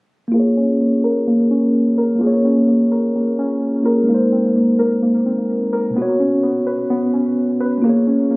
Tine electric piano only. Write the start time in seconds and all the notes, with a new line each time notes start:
0.28 A#3 F4
0.36 G#4 C#5
2.15 A#3 F4
2.23 G#4 C#5
3.82 A#3 F4 G#4
3.88 A#4
4.03 G#3 D#4
4.11 A#4 C5
5.90 B2 B3
5.98 F#4 C#5
7.78 A#3 F4
7.86 G#4 C#5